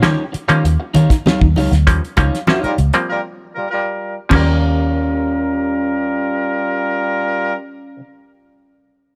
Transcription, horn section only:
2.64 2.73 G3 medium
2.64 2.74 F4 medium
2.64 2.73 A#4 loud
3.09 3.19 G3 medium
3.09 3.19 F4 medium
3.09 3.19 A#4 medium
3.55 3.66 G3 medium
3.55 3.65 F4 medium
3.55 3.65 A#4 medium
3.71 4.15 G3 medium
3.71 4.14 F4 medium
3.71 4.14 A#4 loud
4.33 7.53 G3 medium
4.33 7.53 F4 medium
4.33 7.53 A#4 medium

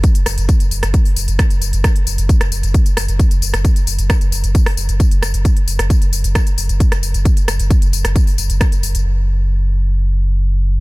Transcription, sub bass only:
0.26 0.37 F#1 loud
0.38 0.49 F#1 medium
0.60 0.71 F#1 medium
0.71 0.82 F#1 loud
0.83 0.94 F#1 medium
1.16 1.27 F#1 loud
1.28 1.39 F#1 medium
1.51 1.61 F#1 medium
1.62 1.73 F#1 loud
1.73 1.84 F#1 medium
2.07 2.18 F#1 loud
2.18 2.29 F#1 medium
2.41 2.51 F#1 medium
2.52 2.63 F#1 loud
2.63 2.74 F#1 medium
2.97 3.08 F#1 loud
3.08 3.19 F#1 medium
3.31 3.42 F#1 medium
3.42 3.53 F#1 loud
3.54 3.64 F#1 medium
3.87 3.98 F#1 loud
3.99 4.09 F#1 medium
4.21 4.32 F#1 medium
4.32 4.43 F#1 loud
4.44 4.55 F#1 medium
4.77 4.88 F#1 loud
4.89 5.00 F#1 medium
5.11 5.22 F#1 medium
5.22 5.33 F#1 loud
5.34 5.45 F#1 medium
5.67 5.78 F#1 loud
5.79 5.90 F#1 medium
6.02 6.12 F#1 medium
6.13 6.24 F#1 loud
6.24 6.35 F#1 medium
6.58 6.69 F#1 loud
6.69 6.80 F#1 medium
6.92 7.02 F#1 medium
7.03 7.14 F#1 loud
7.14 7.25 F#1 medium
7.48 7.59 F#1 loud
7.59 7.70 F#1 medium
7.82 7.92 F#1 medium
7.93 8.04 F#1 loud
8.05 8.15 F#1 medium
8.38 8.49 F#1 loud
8.50 8.61 F#1 medium
8.72 8.83 F#1 medium
8.83 8.94 F#1 loud
8.95 9.05 F#1 medium
9.06 10.80 F#1 medium

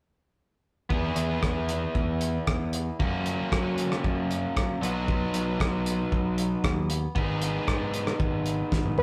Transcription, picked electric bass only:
0.90 1.11 E2 medium
1.16 1.37 E2 medium
1.95 2.37 E2 medium
2.47 2.89 E2 medium
3.00 3.41 F#2 medium
3.52 3.93 F#3 medium
4.04 4.46 F#2 medium
4.56 4.77 F#2 medium
4.82 5.24 B1 medium
5.34 5.54 B1 medium
5.60 6.01 B1 medium
6.12 6.53 B1 medium
6.64 7.05 D#2 medium
7.16 7.57 G#1 medium
7.68 8.09 G#2 medium
8.20 8.61 G#1 medium
8.72 9.03 G#1 medium

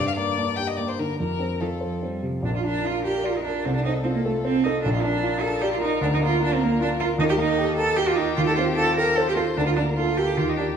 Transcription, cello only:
0.37 0.68 A#3 medium
0.79 1.09 A#3 medium
1.61 1.69 D#3 medium
1.82 2.06 F3 medium
2.04 2.27 G3 medium
2.25 2.44 F3 soft
2.45 2.49 D4 medium
2.56 2.65 F4 medium
2.66 2.87 D4 medium
2.86 3.04 F4 medium
3.05 3.27 G4 medium
3.25 3.38 F4 medium
3.36 3.43 D#4 medium
3.43 3.66 D4 medium
3.65 3.74 C4 medium
3.75 3.83 D4 medium
3.84 3.92 D#4 medium
4.03 4.08 C4 medium
4.14 4.24 A#3 medium
4.24 4.32 A3 medium
4.44 4.65 C4 medium
4.64 4.82 D#4 medium
4.82 4.93 D4 medium
4.93 5.03 F4 medium
5.02 5.42 D4 medium
5.40 5.63 A4 medium
5.61 5.71 G4 medium
5.72 5.76 F4 medium
5.81 6.01 D#4 medium
6.02 6.06 D4 loud
6.14 6.17 D#4 medium
6.23 6.42 F4 medium
6.43 6.55 D4 loud
6.54 6.65 C4 medium
6.63 6.81 A#3 medium
6.81 6.89 D4 medium
7.00 7.08 F4 medium
7.20 7.24 D#4 loud
7.29 7.33 G4 medium
7.38 7.76 D#4 loud
7.77 7.98 A4 loud
7.96 8.09 G4 medium
8.08 8.17 F4 medium
8.16 8.35 D#4 loud
8.36 8.40 F4 loud
8.46 8.55 A4 medium
8.56 8.64 F4 loud
8.75 8.96 A4 loud
8.97 9.17 A#4 loud
9.16 9.27 A4 medium
9.28 9.32 G4 medium
9.36 9.44 F4 medium
9.57 9.65 D4 medium
9.66 9.70 F4 medium
9.76 9.84 D4 medium
9.96 10.19 F4 medium
10.17 10.38 G4 medium
10.37 10.50 F4 medium
10.48 10.56 D#4 medium
10.57 10.65 D4 medium

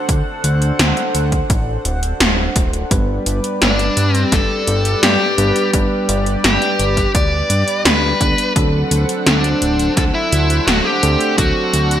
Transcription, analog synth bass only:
0.09 0.23 D2 medium
0.44 0.72 D2 medium
0.79 0.93 D2 medium
1.15 1.43 D2 medium
1.50 1.78 A1 medium
1.85 2.13 D1 medium
2.20 2.48 D1 medium
2.56 2.84 D1 loud
2.91 3.19 G1 loud
3.26 3.40 G1 medium
3.62 3.90 G1 loud
3.97 4.25 G2 medium
4.32 4.46 G1 medium
4.67 4.95 G1 medium
5.03 5.17 G2 loud
5.38 5.52 G1 loud
5.74 5.87 G1 loud
6.09 6.37 G1 loud
6.44 6.58 G1 medium
6.79 7.07 G1 medium
7.15 7.43 D2 medium
7.50 7.64 G2 medium
7.85 8.13 D2 loud
8.21 8.35 D2 medium
8.56 8.84 D2 loud
8.91 9.05 D2 medium
9.26 9.54 D2 medium
9.62 9.90 D1 medium
9.97 10.11 D2 medium
10.32 10.60 D2 loud
10.67 10.81 D1 loud
11.03 11.17 D2 loud
11.38 11.52 D2 loud
11.73 12.00 D2 loud

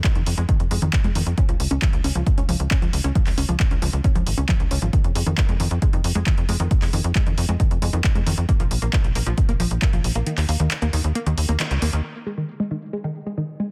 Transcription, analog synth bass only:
0.15 0.24 F2 medium
0.27 0.35 F2 loud
0.38 0.46 F2 medium
0.60 0.68 F2 medium
0.71 0.79 F2 loud
0.82 0.90 F2 medium
1.04 1.12 F2 medium
1.15 1.24 F2 loud
1.27 1.35 F2 medium
1.49 1.57 C#2 medium
1.60 1.68 C#2 medium
1.71 1.79 C#2 medium
1.93 2.01 C#2 medium
2.04 2.12 C#2 loud
2.15 2.24 C#2 medium
2.38 2.46 C#2 medium
2.49 2.57 C#2 loud
2.60 2.68 C#2 medium
2.82 2.90 C#2 medium
2.93 3.01 C#2 loud
3.04 3.12 C#2 medium
3.27 3.35 C#2 medium
3.38 3.46 C#2 loud
3.49 3.57 C#2 medium
3.71 3.79 C#2 medium
3.82 3.90 C#2 loud
3.93 4.01 C#2 medium
4.15 4.24 C#2 medium
4.27 4.35 G#1 loud
4.38 4.46 C#2 medium
4.60 4.68 C#2 medium
4.71 4.79 C#2 loud
4.82 4.90 G#1 medium
5.04 5.12 F2 medium
5.15 5.24 F2 loud
5.27 5.35 F2 medium
5.49 5.57 F2 medium
5.60 5.68 F2 loud
5.71 5.79 F2 medium
5.93 6.01 F2 medium
6.04 6.12 F2 medium
6.15 6.24 F2 medium
6.38 6.46 F2 medium
6.49 6.57 F2 medium
6.60 6.68 F2 medium
6.82 6.90 F2 medium
6.93 7.01 F2 loud
7.04 7.12 F2 medium
7.27 7.35 F2 medium
7.38 7.46 F2 loud
7.49 7.57 F2 medium
7.71 7.79 F2 medium
7.82 7.90 F2 loud
7.93 8.01 F2 medium
8.15 8.24 F2 medium
8.27 8.35 F2 loud
8.38 8.46 F2 medium
8.60 8.68 A#1 medium
8.71 8.79 A#1 loud
8.82 8.90 A#1 medium
9.04 9.12 A#1 medium
9.15 9.24 A#1 loud
9.27 9.35 A#1 medium
9.49 9.57 A#1 medium
9.60 9.68 A#1 loud
9.71 9.79 A#1 medium
9.93 10.01 A#1 medium
10.04 10.13 A#1 loud
10.15 10.24 A#1 medium
10.38 10.46 D#2 medium
10.49 10.57 D#2 loud
10.60 10.68 D#2 medium
10.82 10.90 D#2 medium
10.93 11.01 D#2 loud
11.04 11.12 D#2 medium
11.27 11.35 D#2 medium
11.38 11.46 D#2 loud
11.49 11.57 D#2 medium
11.71 11.79 C#2 medium
11.82 11.90 D#2 loud
11.93 12.01 D#2 medium

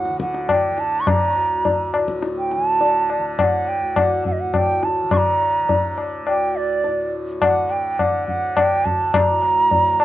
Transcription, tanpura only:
0.00 1.33 D2 soft
0.00 1.95 A2 medium
0.00 0.10 D3 soft
0.10 0.71 D3 medium
0.71 2.57 D3 medium
1.34 3.80 D2 medium
1.95 4.42 A2 medium
2.57 3.18 D3 medium
3.18 5.03 D3 medium
3.80 6.26 D2 medium
4.43 6.86 A2 medium
5.03 5.65 D3 medium
5.65 7.48 D3 medium
6.26 8.69 D2 medium
6.87 9.30 A2 soft
7.48 8.09 D3 medium
8.09 9.92 D3 medium
8.70 10.05 D2 soft
9.30 10.05 A2 medium
9.92 10.05 D3 medium

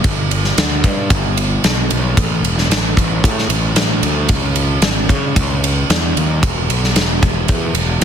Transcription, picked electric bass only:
0.04 0.51 G1 medium
0.58 0.81 D2 medium
0.84 1.08 G2 medium
1.10 1.57 G1 medium
1.64 1.88 B1 medium
1.92 2.15 B1 medium
2.17 2.41 A1 medium
2.43 2.67 E1 medium
2.69 2.93 A1 medium
2.97 3.21 A1 medium
3.23 3.47 A2 medium
3.49 3.73 A1 medium
3.75 3.99 A1 medium
4.03 4.27 D2 medium
4.29 4.77 C#2 medium
4.81 5.06 G#1 medium
5.09 5.33 C#3 medium
5.36 5.83 C#2 medium
5.90 6.13 E2 medium
6.16 6.40 D#2 medium
6.43 6.67 E1 medium
6.69 6.93 B1 medium
6.96 7.20 E1 medium
7.22 7.46 E1 medium
7.49 7.73 E2 medium
7.74 7.99 E1 medium
8.01 8.04 E1 medium

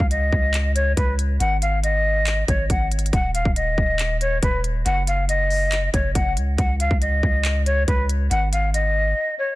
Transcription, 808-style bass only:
0.00 0.31 C#2 loud
0.33 0.95 C#2 loud
0.97 1.39 C#2 loud
1.40 2.44 G#1 loud
2.48 2.69 G#1 loud
2.70 3.11 G#1 loud
3.13 3.44 D#1 loud
3.45 3.77 D#1 loud
3.78 4.40 D#1 loud
4.43 4.84 D#1 loud
4.86 5.90 F#1 loud
5.94 6.14 F#1 loud
6.15 6.38 F#1 loud
6.37 6.57 C#2 loud
6.58 6.90 C#2 loud
6.91 7.22 C#2 loud
7.23 7.85 C#2 loud
7.88 8.29 C#2 loud
8.31 9.14 G#1 loud

